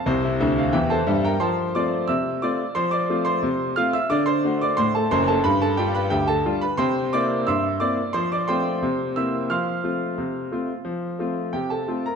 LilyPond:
<<
  \new Staff \with { instrumentName = "Grand piano" } { \time 2/4 \key f \major \tempo 4 = 89 << { r4 <g' g''>16 <a' a''>8 <bes' bes''>16 | <c'' a'' c'''>8 <d'' d'''>8 <e'' e'''>8 <d'' d'''>8 | <c'' c'''>16 <d'' d'''>8 <c'' c'''>8. <f'' f'''>16 <e'' e'''>16 | <d'' d'''>16 <c'' c'''>8 <d'' d'''>16 <c'' c'''>16 <a' a''>16 <c'' c'''>16 <a' a''>16 |
<b' b''>16 <a' a''>16 <g' g''>16 <b' b''>16 <g' g''>16 <a' a''>8 <b' b''>16 | <c'' g'' c'''>8 <d'' d'''>8 <e'' c''' e'''>8 <d'' d'''>8 | <c'' c'''>16 <d'' d'''>16 <c'' g'' c'''>4 <e'' e'''>8 | <f'' c''' f'''>2~ |
<f'' c''' f'''>4 <g' g''>16 <a' a''>8 <bes' bes''>16 | } \\ { c''16 e'16 e''16 f''16 e''16 c''16 e''16 g''16 | r2 | r2 | r2 |
r2 | r2 | r2 | r2 |
r2 | } >> }
  \new Staff \with { instrumentName = "Grand piano" } { \time 2/4 \key f \major <c, c>8 <d, d>8 <e, e>8 <g, g>8 | f8 <a c' f'>8 c8 <a c' f'>8 | f8 <a c' f'>8 c8 <a c' f'>8 | d8 <a d' fis'>8 a,8 <fis,, fis,>8 |
g,8 <g d' f'>8 d,8 <g d' f'>8 | c8 <bes c' e'>8 g,8 <bes c' e'>8 | f8 <a c' f'>8 c8 <bes c' e'>8 | f8 <a c' f'>8 c8 <a c' f'>8 |
f8 <a c' f'>8 c8 <a c' f'>8 | }
>>